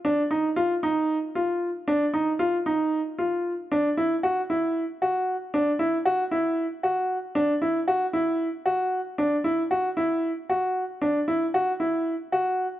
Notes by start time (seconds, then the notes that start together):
0.05 D4
0.31 D#4
0.56 F4
0.83 D#4
1.35 F4
1.88 D4
2.14 D#4
2.39 F4
2.66 D#4
3.18 F4
3.72 D4
3.97 E4
4.23 F#4
4.50 E4
5.02 F#4
5.54 D4
5.79 E4
6.05 F#4
6.31 E4
6.83 F#4
7.35 D4
7.62 E4
7.88 F#4
8.13 E4
8.66 F#4
9.18 D4
9.44 E4
9.71 F#4
9.97 E4
10.50 F#4
11.02 D4
11.28 E4
11.54 F#4
11.80 E4
12.32 F#4